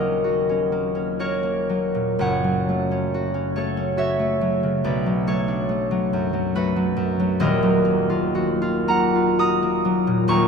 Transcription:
Already playing: D#1 D#2 F#3 A#3 A#4 C#5 D#5 F#5 A#5
0.00 C#4
0.24 F#4
0.49 C#4
0.72 A#3
0.95 C#4
1.19 F#4 A#4 C#5
1.43 A#3
1.69 F#3
1.95 A#2
2.19 F#1 F#2 C#5 F#5
2.44 F#3
2.69 A3
2.91 C#4
3.14 F#4
3.34 C#4
3.56 A3 A4 C#5
3.77 C#4
3.97 F#4 C#5 E5
4.19 A3
4.41 F#3
4.63 C#3
4.84 B1 B4 D5
5.06 F#3
5.27 A3 A4 C#5
5.48 D4
5.69 A3
5.91 F#3
6.13 F#2
6.33 F#3
6.55 A3 F#4 B4
6.76 F#3
6.97 F#2
7.20 F#3
7.40 D#1 D#2 A#4 D#5
7.63 F#3
7.85 A#3
8.10 F4
8.35 F#4
8.62 F4
8.88 A#3 F#5 A#5
9.15 F4
9.39 F#4 A#5 D#6
9.63 A#3
9.85 F#3
10.07 A#2
10.28 D#1 D#2 A#5 C#6

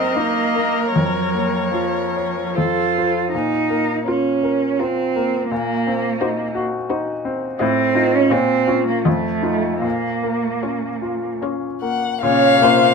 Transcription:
Already playing: F#2 A#3 C4 D#4 A#4 D#5
0.15 A#3 D#4
0.56 A#3
0.92 F2 F#3 C#5
1.34 A#3
1.71 F3 F4
2.17 C#5
2.55 F2 F4 A4 C5
2.98 F4 C5
3.32 A#2 D#4
3.70 A#3
4.07 C#4 F4 A#4
4.43 A#4
4.79 C4 F4 A#4
5.16 A#3
5.50 A#2 A#3
5.87 C4
6.21 D#4 F#4 C5
6.55 F#4
6.90 D#4 F#4 C5
7.25 C4
7.59 A2 C4 F4 D#5
7.95 D#4 F4
8.15 C#4
8.30 A#2 C4 F4 C#5
8.67 C#4 F4
8.88 A#3
9.05 F2 A3 F4 D#5
9.43 D#4 F4
9.82 A#2 A#3
10.23 A#3
10.63 C#4 F4 C#5
11.02 F4
11.41 C#4 F4 C#5
11.82 A#3 F#5
12.21 A#2 C#3 C#5 F5
12.60 C3 A#3 C#4 F4 C5

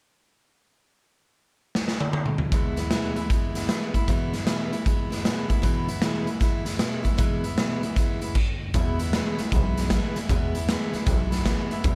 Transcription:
1.75 snare
1.88 snare
2.00 high tom
2.13 high tom
2.26 mid tom
2.38 floor tom
2.52 E2 B2 E3 G#3 B3 E4, kick, closed hi-hat
2.76 E3 G#3 B3 E4, snare, closed hi-hat
2.91 E2 B2 E3 G#3 B3 E4, snare, closed hi-hat
3.16 E3 G#3 B3 E4, closed hi-hat
3.30 E3 G#3 B3 E4, kick, closed hi-hat
3.55 E3 G#3 B3 E4, snare, closed hi-hat
3.68 E2 B2 E3 G#3 B3 E4, snare, closed hi-hat
3.94 E3 G#3 B3 E4, kick, closed hi-hat
4.08 E2 B2 E3 G#3 B3 E4, kick, closed hi-hat
4.33 E3 G#3 B3 E4, snare, closed hi-hat
4.47 E2 B2 E3 G#3 B3 E4, snare, closed hi-hat
4.72 E3 G#3 B3 E4, closed hi-hat
4.85 E3 G#3 B3 E4, kick, closed hi-hat
5.10 E3 G#3 B3 E4, snare, closed hi-hat
5.25 E2 B2 E3 G#3 B3 E4, snare, closed hi-hat
5.49 E3 G#3 B3 E4, kick, closed hi-hat
5.62 E2 B2 E3 G#3 B3 E4, kick, closed hi-hat
5.88 E3 G#3 B3 E4, closed hi-hat
6.02 E2 B2 E3 G#3 B3 E4, snare, closed hi-hat
6.27 E3 G#3 B3 E4, closed hi-hat
6.40 E3 G#3 B3 E4, kick, snare, closed hi-hat
6.65 E3 G#3 B3 E4, snare, closed hi-hat
6.78 E2 B2 E3 G#3 B3 E4, snare, closed hi-hat
7.03 E3 G#3 B3 E4, kick, closed hi-hat
7.17 E2 B2 E3 G#3 B3 E4, kick, closed hi-hat
7.44 E3 G#3 B3 E4, closed hi-hat
7.57 E2 B2 E3 G#3 B3 E4, snare, closed hi-hat
7.83 E3 G#3 B3 E4, closed hi-hat
7.96 E3 G#3 B3 E4, kick, snare, closed hi-hat
8.21 E3 G#3 B3 E4, closed hi-hat
8.35 kick, crash
8.74 E2 B2 E3 G#3 B3 E4, kick, closed hi-hat
8.99 E3 G#3 B3 E4, closed hi-hat
9.13 E2 B2 E3 G#3 B3 E4, snare, closed hi-hat
9.39 E3 G#3 B3 E4, muted upright bass stroke, snare, closed hi-hat
9.52 B1 E3 G#3 B3 E4, kick, closed hi-hat
9.77 E3 G#3 B3 E4, snare, closed hi-hat
9.90 E2 B2 E3 G#3 B3 E4, kick, snare, closed hi-hat
10.16 E3 G#3 B3 E4, muted upright bass stroke, snare, closed hi-hat
10.29 E2 B2 E3 G#3 B3 E4, kick, closed hi-hat
10.55 E3 G#3 B3 E4, closed hi-hat
10.69 E2 B2 E3 G#3 B3 E4, snare, closed hi-hat
10.93 E3 G#3 B3 E4, muted upright bass stroke, snare, closed hi-hat
11.06 B1 E3 G#3 B3 E4, kick, snare, closed hi-hat
11.31 E3 G#3 B3 E4, snare, closed hi-hat
11.46 E2 B2 E3 G#3 B3 E4, kick, snare, closed hi-hat
11.71 E3 G#3 B3 E4, muted upright bass stroke, closed hi-hat
11.84 E2 B2 E3 G#3 B3 E4, kick, closed hi-hat

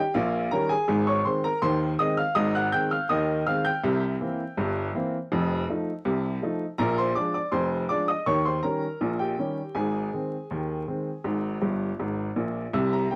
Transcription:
Already playing: G4 G5
0.14 A#1 A#2 F4 F5
0.51 D#3 G3 C#4 A#4 A#5
0.69 G#4 G#5
0.88 G#1 G#2
1.07 C#5 C#6
1.25 D#3 G#3 C4 C5 C6
1.44 A#4 A#5
1.62 D#2 D#3 C5 C6
1.99 D#3 G#3 C4 D#5 D#6
2.17 F5 F6
2.35 G#1 G#2 D#5 D#6
2.55 F#5 F#6
2.72 D#3 G#3 C4 G5 G6
2.91 F5 F6
3.09 D#2 D#3 D#5 D#6
3.47 D#3 G#3 C4 F5 F6
3.65 G5 G6
3.83 C2 C3
4.21 E3 A#3 C4
4.57 G1 G2
4.95 E3 A#3 C4
5.32 F1 F2
5.69 F3 A3 D#4
6.05 C2 C3
6.42 F3 A3 D#4
6.78 A#1 A#2 A#4 A#5
6.98 C5 C6
7.15 F3 G#3 D4 D5 D6
7.34 D5 D6
7.52 F1 F2 C5 C6
7.89 F3 G#3 D4 D5 D6
8.08 D#5 D#6
8.26 D#2 D#3 C#5 C#6
8.45 C5 C6
8.63 D#3 G3 C#4 A#4 A#5
9.01 A#1 A#2
9.19 G4 G5
9.38 D#3 G3 C#4
9.75 G#1 G#2 G#4 G#5
10.13 D#3 G#3 C4
10.51 D#2 D#3
10.87 D#3 G#3 C4
11.24 G#1 G#2
11.62 G1 G2
11.99 G#1 G#2
12.36 A#1 A#2
12.73 C2 C3 E6
12.93 A#5
13.11 E3 A#3 C4 G5

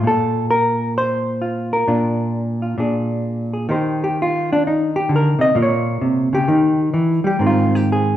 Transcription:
0.03 A#2 A4
0.51 A#4
0.98 C5
1.42 F4
1.73 A#4
1.88 A#2 D4 F4
2.62 F4
2.78 A#2 D4 G#4
3.54 G#4
3.69 D#3 D#4 G4 C5
4.04 G4
4.22 F4
4.53 D4
4.67 D#4
4.96 G4
5.09 D3
5.16 A#4
5.39 C3 D#5
5.55 A#2 A#3 F4
5.62 C#5
6.01 C3
6.33 C#3 G4
6.48 D#3 D#4
6.94 E3
7.24 G3 G4
7.39 G#2 D#3 C4
7.47 F4
7.75 G4
7.92 G#4

